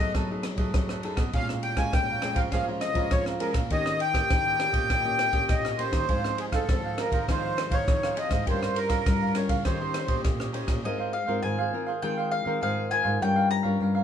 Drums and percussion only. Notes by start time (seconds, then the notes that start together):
0.15 kick, cross-stick, ride
0.43 cross-stick, ride
0.57 kick, ride
0.74 kick, cross-stick, ride
0.89 cross-stick
1.03 ride
1.17 kick, cross-stick, ride
1.33 kick, ride
1.49 cross-stick
1.63 ride
1.77 kick, cross-stick, ride
1.93 kick, cross-stick, ride
2.22 cross-stick, ride
2.36 kick, ride
2.52 kick, cross-stick, ride
2.81 cross-stick, ride
2.95 kick, ride
3.11 kick, cross-stick, ride
3.26 cross-stick
3.40 ride
3.54 kick, cross-stick, ride
3.70 kick, ride
3.86 cross-stick
4.00 ride
4.14 kick, cross-stick, ride
4.30 kick, cross-stick, ride
4.60 cross-stick, ride
4.74 kick, ride
4.90 kick, cross-stick, ride
5.19 cross-stick, ride
5.33 kick, ride
5.49 kick, cross-stick, ride
5.65 cross-stick
5.79 ride
5.93 kick, cross-stick, ride
6.09 kick, ride
6.24 cross-stick
6.38 ride
6.52 kick, cross-stick, ride
6.69 kick, cross-stick, ride
6.98 cross-stick, ride
7.12 kick, ride
7.28 kick, cross-stick, ride
7.58 cross-stick, ride
7.71 kick, ride
7.88 kick, cross-stick, ride
8.03 cross-stick
8.17 ride
8.31 kick, cross-stick, ride
8.47 kick, ride
8.63 cross-stick
8.76 ride
8.90 kick, cross-stick, ride
9.06 kick, cross-stick, ride
9.35 cross-stick, ride
9.49 kick, ride
9.65 kick, cross-stick, ride
9.94 cross-stick, ride
10.08 kick, ride
10.24 kick, cross-stick, ride
10.40 cross-stick
10.54 ride
10.68 kick, cross-stick, ride